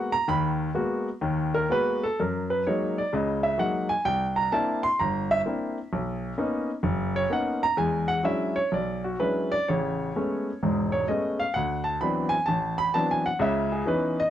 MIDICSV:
0, 0, Header, 1, 2, 480
1, 0, Start_track
1, 0, Tempo, 476569
1, 285, Time_signature, 4, 2, 24, 8
1, 2691, Tempo, 461538
1, 6531, Tempo, 474684
1, 10851, Tempo, 463320
1, 14648, End_track
2, 0, Start_track
2, 0, Title_t, "Grand piano"
2, 0, Program_c, 0, 0
2, 0, Note_on_c, 0, 56, 48
2, 0, Note_on_c, 0, 58, 44
2, 0, Note_on_c, 0, 59, 45
2, 0, Note_on_c, 0, 66, 58
2, 0, Note_on_c, 0, 78, 84
2, 117, Note_off_c, 0, 78, 0
2, 126, Note_on_c, 0, 82, 107
2, 141, Note_off_c, 0, 58, 0
2, 143, Note_off_c, 0, 56, 0
2, 145, Note_off_c, 0, 59, 0
2, 147, Note_off_c, 0, 66, 0
2, 280, Note_off_c, 0, 82, 0
2, 281, Note_on_c, 0, 51, 69
2, 283, Note_on_c, 0, 39, 74
2, 290, Note_on_c, 0, 83, 100
2, 476, Note_off_c, 0, 83, 0
2, 689, Note_off_c, 0, 51, 0
2, 691, Note_off_c, 0, 39, 0
2, 750, Note_on_c, 0, 59, 51
2, 751, Note_on_c, 0, 56, 60
2, 752, Note_on_c, 0, 58, 53
2, 759, Note_on_c, 0, 66, 72
2, 1083, Note_off_c, 0, 59, 0
2, 1084, Note_off_c, 0, 56, 0
2, 1084, Note_off_c, 0, 58, 0
2, 1087, Note_off_c, 0, 66, 0
2, 1222, Note_on_c, 0, 39, 72
2, 1223, Note_on_c, 0, 51, 69
2, 1555, Note_on_c, 0, 70, 91
2, 1653, Note_off_c, 0, 39, 0
2, 1654, Note_off_c, 0, 51, 0
2, 1707, Note_on_c, 0, 58, 49
2, 1708, Note_on_c, 0, 59, 50
2, 1711, Note_on_c, 0, 56, 58
2, 1718, Note_off_c, 0, 70, 0
2, 1719, Note_on_c, 0, 66, 60
2, 1730, Note_on_c, 0, 71, 98
2, 2044, Note_off_c, 0, 71, 0
2, 2049, Note_on_c, 0, 69, 89
2, 2058, Note_off_c, 0, 58, 0
2, 2059, Note_off_c, 0, 59, 0
2, 2060, Note_off_c, 0, 56, 0
2, 2064, Note_off_c, 0, 66, 0
2, 2206, Note_off_c, 0, 69, 0
2, 2213, Note_on_c, 0, 42, 65
2, 2215, Note_on_c, 0, 70, 66
2, 2520, Note_on_c, 0, 71, 76
2, 2522, Note_off_c, 0, 70, 0
2, 2628, Note_off_c, 0, 42, 0
2, 2680, Note_off_c, 0, 71, 0
2, 2686, Note_on_c, 0, 73, 72
2, 2689, Note_on_c, 0, 54, 54
2, 2691, Note_on_c, 0, 56, 50
2, 2691, Note_on_c, 0, 58, 50
2, 2693, Note_on_c, 0, 63, 57
2, 3004, Note_off_c, 0, 73, 0
2, 3015, Note_on_c, 0, 74, 82
2, 3031, Note_off_c, 0, 54, 0
2, 3033, Note_off_c, 0, 56, 0
2, 3033, Note_off_c, 0, 58, 0
2, 3034, Note_off_c, 0, 63, 0
2, 3165, Note_on_c, 0, 49, 67
2, 3167, Note_on_c, 0, 37, 68
2, 3172, Note_off_c, 0, 74, 0
2, 3184, Note_on_c, 0, 75, 72
2, 3485, Note_on_c, 0, 76, 82
2, 3490, Note_off_c, 0, 75, 0
2, 3587, Note_off_c, 0, 49, 0
2, 3588, Note_off_c, 0, 37, 0
2, 3635, Note_on_c, 0, 54, 50
2, 3637, Note_on_c, 0, 56, 45
2, 3640, Note_on_c, 0, 63, 53
2, 3644, Note_on_c, 0, 58, 43
2, 3646, Note_off_c, 0, 76, 0
2, 3652, Note_on_c, 0, 78, 83
2, 3963, Note_on_c, 0, 80, 97
2, 3966, Note_off_c, 0, 78, 0
2, 3983, Note_off_c, 0, 54, 0
2, 3984, Note_off_c, 0, 56, 0
2, 3986, Note_off_c, 0, 63, 0
2, 3987, Note_off_c, 0, 58, 0
2, 4127, Note_off_c, 0, 80, 0
2, 4128, Note_on_c, 0, 36, 68
2, 4129, Note_on_c, 0, 79, 94
2, 4446, Note_off_c, 0, 79, 0
2, 4450, Note_on_c, 0, 82, 100
2, 4552, Note_off_c, 0, 36, 0
2, 4612, Note_off_c, 0, 82, 0
2, 4616, Note_on_c, 0, 81, 86
2, 4617, Note_on_c, 0, 58, 56
2, 4622, Note_on_c, 0, 60, 54
2, 4625, Note_on_c, 0, 62, 55
2, 4628, Note_on_c, 0, 64, 65
2, 4929, Note_off_c, 0, 81, 0
2, 4937, Note_on_c, 0, 84, 104
2, 4956, Note_off_c, 0, 58, 0
2, 4958, Note_off_c, 0, 60, 0
2, 4960, Note_off_c, 0, 62, 0
2, 4961, Note_off_c, 0, 64, 0
2, 5095, Note_off_c, 0, 84, 0
2, 5106, Note_on_c, 0, 82, 80
2, 5116, Note_on_c, 0, 31, 71
2, 5413, Note_off_c, 0, 82, 0
2, 5436, Note_on_c, 0, 76, 101
2, 5524, Note_off_c, 0, 31, 0
2, 5527, Note_off_c, 0, 76, 0
2, 5589, Note_on_c, 0, 58, 51
2, 5592, Note_on_c, 0, 60, 47
2, 5596, Note_on_c, 0, 64, 54
2, 5598, Note_on_c, 0, 62, 47
2, 5915, Note_off_c, 0, 58, 0
2, 5916, Note_off_c, 0, 60, 0
2, 5919, Note_off_c, 0, 62, 0
2, 5919, Note_off_c, 0, 64, 0
2, 6076, Note_on_c, 0, 35, 72
2, 6478, Note_off_c, 0, 35, 0
2, 6542, Note_on_c, 0, 58, 59
2, 6543, Note_on_c, 0, 61, 57
2, 6550, Note_on_c, 0, 59, 57
2, 6552, Note_on_c, 0, 63, 64
2, 6867, Note_off_c, 0, 58, 0
2, 6867, Note_off_c, 0, 61, 0
2, 6871, Note_off_c, 0, 59, 0
2, 6872, Note_off_c, 0, 63, 0
2, 7002, Note_on_c, 0, 30, 80
2, 7336, Note_on_c, 0, 73, 95
2, 7414, Note_off_c, 0, 30, 0
2, 7476, Note_on_c, 0, 58, 53
2, 7482, Note_off_c, 0, 73, 0
2, 7482, Note_on_c, 0, 61, 51
2, 7483, Note_on_c, 0, 59, 45
2, 7486, Note_on_c, 0, 63, 58
2, 7505, Note_on_c, 0, 78, 92
2, 7796, Note_off_c, 0, 78, 0
2, 7807, Note_off_c, 0, 58, 0
2, 7810, Note_off_c, 0, 61, 0
2, 7811, Note_off_c, 0, 59, 0
2, 7812, Note_off_c, 0, 63, 0
2, 7812, Note_on_c, 0, 82, 106
2, 7953, Note_on_c, 0, 40, 72
2, 7954, Note_on_c, 0, 56, 69
2, 7957, Note_off_c, 0, 82, 0
2, 7961, Note_on_c, 0, 80, 87
2, 8263, Note_off_c, 0, 80, 0
2, 8264, Note_on_c, 0, 78, 99
2, 8365, Note_off_c, 0, 40, 0
2, 8365, Note_off_c, 0, 56, 0
2, 8418, Note_on_c, 0, 54, 53
2, 8420, Note_off_c, 0, 78, 0
2, 8426, Note_on_c, 0, 61, 53
2, 8429, Note_on_c, 0, 56, 52
2, 8429, Note_on_c, 0, 64, 65
2, 8431, Note_on_c, 0, 62, 50
2, 8436, Note_on_c, 0, 76, 86
2, 8740, Note_off_c, 0, 76, 0
2, 8748, Note_on_c, 0, 73, 91
2, 8756, Note_off_c, 0, 54, 0
2, 8760, Note_off_c, 0, 61, 0
2, 8762, Note_off_c, 0, 56, 0
2, 8762, Note_off_c, 0, 64, 0
2, 8763, Note_off_c, 0, 62, 0
2, 8904, Note_off_c, 0, 73, 0
2, 8912, Note_on_c, 0, 35, 61
2, 8929, Note_on_c, 0, 74, 78
2, 9236, Note_off_c, 0, 74, 0
2, 9241, Note_on_c, 0, 66, 62
2, 9338, Note_off_c, 0, 35, 0
2, 9395, Note_on_c, 0, 56, 47
2, 9397, Note_on_c, 0, 71, 79
2, 9399, Note_on_c, 0, 54, 45
2, 9399, Note_on_c, 0, 62, 45
2, 9400, Note_off_c, 0, 66, 0
2, 9405, Note_on_c, 0, 64, 48
2, 9408, Note_on_c, 0, 61, 42
2, 9718, Note_off_c, 0, 71, 0
2, 9718, Note_on_c, 0, 74, 101
2, 9743, Note_off_c, 0, 56, 0
2, 9745, Note_off_c, 0, 54, 0
2, 9745, Note_off_c, 0, 62, 0
2, 9748, Note_off_c, 0, 64, 0
2, 9749, Note_off_c, 0, 61, 0
2, 9881, Note_off_c, 0, 74, 0
2, 9887, Note_on_c, 0, 73, 72
2, 9894, Note_on_c, 0, 33, 66
2, 9898, Note_on_c, 0, 49, 68
2, 10309, Note_off_c, 0, 33, 0
2, 10311, Note_off_c, 0, 49, 0
2, 10368, Note_on_c, 0, 56, 54
2, 10369, Note_on_c, 0, 57, 53
2, 10370, Note_on_c, 0, 59, 50
2, 10372, Note_on_c, 0, 61, 59
2, 10704, Note_off_c, 0, 56, 0
2, 10704, Note_off_c, 0, 57, 0
2, 10705, Note_off_c, 0, 59, 0
2, 10706, Note_off_c, 0, 61, 0
2, 10807, Note_off_c, 0, 73, 0
2, 10838, Note_on_c, 0, 28, 74
2, 10841, Note_on_c, 0, 44, 64
2, 11146, Note_on_c, 0, 73, 83
2, 11264, Note_off_c, 0, 28, 0
2, 11266, Note_off_c, 0, 44, 0
2, 11310, Note_on_c, 0, 75, 77
2, 11316, Note_off_c, 0, 73, 0
2, 11318, Note_on_c, 0, 56, 53
2, 11324, Note_on_c, 0, 57, 47
2, 11330, Note_on_c, 0, 59, 43
2, 11332, Note_on_c, 0, 61, 54
2, 11630, Note_off_c, 0, 75, 0
2, 11636, Note_on_c, 0, 77, 90
2, 11660, Note_off_c, 0, 56, 0
2, 11663, Note_off_c, 0, 57, 0
2, 11666, Note_off_c, 0, 59, 0
2, 11667, Note_off_c, 0, 61, 0
2, 11785, Note_on_c, 0, 78, 94
2, 11800, Note_off_c, 0, 77, 0
2, 11805, Note_on_c, 0, 38, 65
2, 12097, Note_on_c, 0, 81, 80
2, 12106, Note_off_c, 0, 78, 0
2, 12223, Note_off_c, 0, 38, 0
2, 12268, Note_off_c, 0, 81, 0
2, 12272, Note_on_c, 0, 83, 89
2, 12281, Note_on_c, 0, 52, 57
2, 12287, Note_on_c, 0, 54, 51
2, 12289, Note_on_c, 0, 59, 50
2, 12292, Note_on_c, 0, 60, 52
2, 12294, Note_on_c, 0, 62, 66
2, 12567, Note_on_c, 0, 80, 105
2, 12588, Note_off_c, 0, 83, 0
2, 12618, Note_off_c, 0, 52, 0
2, 12622, Note_off_c, 0, 54, 0
2, 12623, Note_off_c, 0, 59, 0
2, 12624, Note_off_c, 0, 60, 0
2, 12625, Note_off_c, 0, 62, 0
2, 12739, Note_on_c, 0, 81, 82
2, 12741, Note_off_c, 0, 80, 0
2, 12762, Note_on_c, 0, 33, 66
2, 13062, Note_off_c, 0, 81, 0
2, 13074, Note_on_c, 0, 83, 104
2, 13181, Note_off_c, 0, 33, 0
2, 13237, Note_off_c, 0, 83, 0
2, 13240, Note_on_c, 0, 81, 92
2, 13243, Note_on_c, 0, 54, 49
2, 13246, Note_on_c, 0, 59, 48
2, 13247, Note_on_c, 0, 52, 54
2, 13251, Note_on_c, 0, 60, 48
2, 13253, Note_on_c, 0, 62, 62
2, 13400, Note_off_c, 0, 81, 0
2, 13415, Note_on_c, 0, 80, 88
2, 13567, Note_on_c, 0, 78, 88
2, 13568, Note_off_c, 0, 80, 0
2, 13583, Note_off_c, 0, 54, 0
2, 13584, Note_off_c, 0, 59, 0
2, 13585, Note_off_c, 0, 52, 0
2, 13587, Note_off_c, 0, 60, 0
2, 13588, Note_off_c, 0, 62, 0
2, 13706, Note_on_c, 0, 37, 78
2, 13712, Note_on_c, 0, 49, 74
2, 13724, Note_off_c, 0, 78, 0
2, 13733, Note_on_c, 0, 76, 84
2, 14042, Note_off_c, 0, 76, 0
2, 14047, Note_on_c, 0, 68, 67
2, 14135, Note_off_c, 0, 37, 0
2, 14138, Note_off_c, 0, 49, 0
2, 14187, Note_on_c, 0, 52, 63
2, 14197, Note_on_c, 0, 59, 54
2, 14197, Note_on_c, 0, 63, 65
2, 14199, Note_on_c, 0, 61, 58
2, 14205, Note_off_c, 0, 68, 0
2, 14212, Note_on_c, 0, 71, 77
2, 14520, Note_off_c, 0, 71, 0
2, 14533, Note_off_c, 0, 52, 0
2, 14538, Note_off_c, 0, 59, 0
2, 14538, Note_off_c, 0, 63, 0
2, 14539, Note_off_c, 0, 61, 0
2, 14542, Note_on_c, 0, 75, 96
2, 14648, Note_off_c, 0, 75, 0
2, 14648, End_track
0, 0, End_of_file